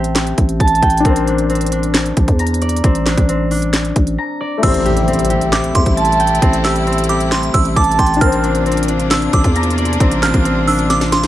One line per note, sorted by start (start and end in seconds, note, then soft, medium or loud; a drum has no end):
0.00 0.34 A1 loud
0.00 0.98 A3 medium
0.00 1.05 C4 medium
0.00 1.00 E4 medium
0.00 1.02 G4 medium
0.00 2.28 G4 medium
0.00 1.03 C5 medium
0.00 0.59 G5 medium
0.00 0.26 A5 medium
0.04 closed hi-hat medium
0.15 snare loud
0.15 clap medium
0.15 closed hi-hat medium
0.27 closed hi-hat medium
0.38 0.59 A1 loud
0.38 kick loud
0.38 closed hi-hat medium
0.49 closed hi-hat medium
0.60 0.82 A1 loud
0.60 2.05 A5 loud
0.60 kick loud
0.60 closed hi-hat medium
0.68 closed hi-hat medium
0.75 closed hi-hat medium
0.83 1.04 A1 loud
0.83 2.38 G5 medium
0.83 kick medium
0.83 closed hi-hat medium
0.90 closed hi-hat medium
0.97 4.57 D4 medium
0.97 closed hi-hat medium
1.05 2.13 A1 loud
1.05 1.49 C4 medium
1.05 4.59 A#4 medium
1.05 kick loud
1.05 closed hi-hat medium
1.10 4.62 C5 medium
1.16 closed hi-hat medium
1.27 1.72 D4 medium
1.27 closed hi-hat medium
1.38 closed hi-hat medium
1.50 2.84 C4 medium
1.50 closed hi-hat soft
1.55 closed hi-hat medium
1.61 closed hi-hat medium
1.66 closed hi-hat medium
1.72 3.06 D4 medium
1.72 closed hi-hat medium
1.83 closed hi-hat medium
1.94 snare loud
1.94 clap medium
1.94 closed hi-hat medium
2.06 closed hi-hat medium
2.17 2.27 A1 loud
2.17 kick loud
2.17 closed hi-hat medium
2.28 2.82 E2 loud
2.28 kick medium
2.28 closed hi-hat medium
2.39 3.79 A#5 loud
2.39 closed hi-hat medium
2.47 closed hi-hat medium
2.54 closed hi-hat medium
2.62 4.40 D5 medium
2.62 closed hi-hat medium
2.69 closed hi-hat medium
2.77 closed hi-hat medium
2.84 3.16 A1 loud
2.84 3.28 C4 medium
2.84 kick loud
2.84 closed hi-hat medium
2.95 closed hi-hat medium
3.06 3.51 D4 medium
3.06 snare medium
3.06 clap medium
3.06 closed hi-hat medium
3.17 3.93 A1 loud
3.17 kick loud
3.17 closed hi-hat medium
3.29 4.63 C4 medium
3.29 closed hi-hat medium
3.51 6.31 D4 medium
3.51 open hi-hat medium
3.62 closed hi-hat medium
3.73 snare loud
3.73 clap medium
3.73 closed hi-hat medium
3.85 closed hi-hat medium
3.96 4.17 A1 loud
3.96 kick loud
3.96 closed hi-hat medium
4.07 closed hi-hat medium
4.18 5.58 A#5 loud
4.41 6.25 D5 medium
4.58 8.15 A3 medium
4.58 8.16 E4 medium
4.63 5.71 A1 loud
4.63 11.27 C3 medium
4.63 8.18 G3 medium
4.63 8.18 A3 medium
4.63 5.07 C4 medium
4.63 8.18 E4 loud
4.63 8.18 G4 medium
4.63 5.49 E6 loud
4.63 kick loud
4.63 closed hi-hat medium
4.63 crash loud
4.63 impact medium
4.68 8.20 C5 medium
4.74 closed hi-hat medium
4.85 5.29 G4 medium
4.85 closed hi-hat medium
4.97 closed hi-hat medium
5.08 6.42 C4 medium
5.08 closed hi-hat soft
5.13 closed hi-hat medium
5.19 closed hi-hat medium
5.25 closed hi-hat medium
5.30 6.65 G4 medium
5.30 closed hi-hat medium
5.41 closed hi-hat medium
5.52 5.74 D6 medium
5.52 snare loud
5.52 clap medium
5.52 closed hi-hat medium
5.64 closed hi-hat medium
5.75 5.86 E2 loud
5.75 6.38 C6 medium
5.75 kick loud
5.75 closed hi-hat medium
5.86 6.40 A1 loud
5.86 kick medium
5.86 closed hi-hat medium
5.97 7.42 A5 medium
5.97 closed hi-hat medium
6.05 closed hi-hat medium
6.12 closed hi-hat medium
6.20 7.75 G5 medium
6.20 closed hi-hat medium
6.27 closed hi-hat medium
6.35 closed hi-hat medium
6.42 7.50 A1 loud
6.42 6.86 C4 loud
6.42 kick loud
6.42 closed hi-hat medium
6.53 closed hi-hat medium
6.64 7.09 G4 medium
6.64 7.07 E6 medium
6.64 snare medium
6.64 clap medium
6.64 closed hi-hat medium
6.76 closed hi-hat medium
6.87 8.21 C4 medium
6.87 closed hi-hat soft
6.93 closed hi-hat medium
6.98 closed hi-hat medium
7.04 closed hi-hat medium
7.09 9.45 G4 medium
7.09 7.31 D6 medium
7.09 closed hi-hat medium
7.20 closed hi-hat medium
7.32 7.53 C6 loud
7.32 snare loud
7.32 clap medium
7.32 closed hi-hat medium
7.43 closed hi-hat medium
7.54 7.76 A1 loud
7.54 7.75 E6 loud
7.54 kick loud
7.54 closed hi-hat medium
7.65 closed hi-hat medium
7.76 7.98 A1 loud
7.76 9.21 A5 loud
7.76 7.98 D6 medium
7.76 kick loud
7.76 closed hi-hat medium
7.84 closed hi-hat medium
7.91 closed hi-hat medium
7.99 8.20 A1 loud
7.99 9.54 G5 medium
7.99 8.20 C6 medium
7.99 kick medium
7.99 closed hi-hat medium
8.06 closed hi-hat medium
8.14 11.27 D4 medium
8.14 closed hi-hat medium
8.21 9.29 A1 loud
8.21 11.27 A#3 medium
8.21 8.66 C4 loud
8.21 11.27 D4 loud
8.21 11.27 F4 medium
8.21 11.27 A#4 medium
8.21 9.07 F6 loud
8.21 kick loud
8.21 closed hi-hat medium
8.27 11.27 C5 medium
8.32 closed hi-hat medium
8.44 8.88 D4 medium
8.44 closed hi-hat medium
8.55 closed hi-hat medium
8.66 10.00 C4 medium
8.66 closed hi-hat soft
8.72 closed hi-hat medium
8.77 closed hi-hat medium
8.83 closed hi-hat medium
8.88 10.22 D4 medium
8.88 closed hi-hat medium
9.00 closed hi-hat medium
9.11 9.32 E6 medium
9.11 snare loud
9.11 clap medium
9.11 closed hi-hat medium
9.22 closed hi-hat medium
9.33 9.44 A1 loud
9.33 9.97 D6 medium
9.33 kick loud
9.33 closed hi-hat medium
9.44 9.98 E2 loud
9.44 kick medium
9.44 closed hi-hat medium
9.56 10.96 A#5 loud
9.56 closed hi-hat medium
9.63 closed hi-hat medium
9.70 closed hi-hat medium
9.78 11.27 D5 medium
9.78 closed hi-hat medium
9.85 closed hi-hat medium
9.93 closed hi-hat medium
10.00 10.33 A1 loud
10.00 10.45 C4 medium
10.00 kick loud
10.00 closed hi-hat medium
10.11 closed hi-hat medium
10.22 10.67 D4 medium
10.22 10.65 F6 medium
10.22 snare medium
10.22 clap medium
10.22 closed hi-hat medium
10.34 11.27 A1 loud
10.34 kick loud
10.34 closed hi-hat medium
10.45 11.27 C4 medium
10.45 closed hi-hat medium
10.67 11.27 D4 medium
10.67 10.89 E6 medium
10.67 open hi-hat medium
10.79 closed hi-hat medium
10.90 11.11 D6 medium
10.90 snare medium
10.90 closed hi-hat medium
11.01 snare medium
11.01 closed hi-hat medium
11.12 11.27 C6 medium
11.12 snare medium
11.12 closed hi-hat medium
11.23 snare medium
11.23 closed hi-hat medium